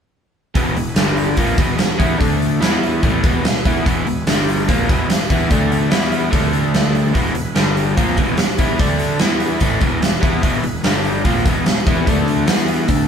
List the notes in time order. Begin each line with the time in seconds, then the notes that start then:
0.55 E1 E2 B2 E3 B3 E4 G#4 B4, kick, open hi-hat
0.74 E1 E2 B2, open hi-hat
0.96 G1 G2 D3 G3 D4 G4 D5, snare, open hi-hat
1.17 open hi-hat
1.37 A#1 A#2 F3 A#3 B3 E4 G#4 B4, kick, open hi-hat
1.58 E1 E2 B2 E3, kick, open hi-hat
1.78 E1 E2 B2, snare, open hi-hat
1.98 E2 E3 B3 E4, kick, open hi-hat
2.19 D2 D3 A3 D4 A4 D5, kick, open hi-hat
2.42 open hi-hat
2.60 E2 E3 B3 E4 G#4 B4, snare, open hi-hat
2.83 open hi-hat
3.03 A1 A2 E3 A3, kick, open hi-hat
3.24 E1 E2 B2 E3, kick, open hi-hat
3.44 E1 E2 B2, snare, open hi-hat
3.65 E2 E3 B3 E4, kick, open hi-hat
3.85 E1 E2 B2 E3, kick, open hi-hat
4.06 E1 E2 B2, open hi-hat
4.27 G1 G2 D3 G3 D4 G4 D5, snare, open hi-hat
4.49 open hi-hat
4.68 A#1 A#2 F3 A#3 B3 E4 G#4 B4, kick, open hi-hat
4.89 E1 E2 B2 E3, kick, open hi-hat
5.10 E1 E2 B2, snare, open hi-hat
5.30 E2 E3 B3 E4, kick, open hi-hat
5.50 D2 D3 A3 D4 A4 D5, kick, open hi-hat
5.72 open hi-hat
5.90 E2 E3 B3 E4 G#4 B4, snare, open hi-hat
6.12 open hi-hat
6.31 D2 D3 A3 D4 A4 D5, kick, open hi-hat
6.53 open hi-hat
6.74 snare, open hi-hat
6.95 open hi-hat
7.13 E1 E2 B2 E3 B3 E4 G#4 B4, kick, open hi-hat
7.35 E1 E2 B2, open hi-hat
7.55 G1 G2 D3 G3 D4 G4 D5, snare, open hi-hat
7.77 open hi-hat
7.97 A#1 A#2 F3 A#3 B3 E4 G#4 B4, kick, open hi-hat
8.17 E1 E2 B2 E3, kick, open hi-hat
8.37 E1 E2 B2, snare, open hi-hat
8.58 E2 E3 B3 E4, kick, open hi-hat
8.79 D2 D3 A3 D4 A4 D5, kick, open hi-hat
8.99 open hi-hat
9.18 E2 E3 B3 E4 G#4 B4, snare, open hi-hat
9.40 open hi-hat
9.60 A1 A2 E3 A3, kick, open hi-hat
9.81 E1 E2 B2 E3, kick, open hi-hat
10.01 E1 E2 B2, snare, open hi-hat
10.21 E2 E3 B3 E4, kick, open hi-hat
10.42 E1 E2 B2 E3, kick, open hi-hat
10.63 E1 E2 B2, open hi-hat
10.84 G1 G2 D3 G3 D4 G4 D5, snare, open hi-hat
11.05 open hi-hat
11.25 A#1 A#2 F3 A#3 B3 E4 G#4 B4, kick, open hi-hat
11.45 E1 E2 B2 E3, kick, open hi-hat
11.66 E1 E2 B2, snare, open hi-hat
11.86 E2 E3 B3 E4, kick, open hi-hat
12.07 D2 D3 A3 D4 A4 D5, kick, open hi-hat
12.28 open hi-hat
12.47 E2 E3 B3 E4 G#4 B4, snare, open hi-hat
12.68 open hi-hat
12.88 D2 D3 A3 D4 A4 D5, kick, open hi-hat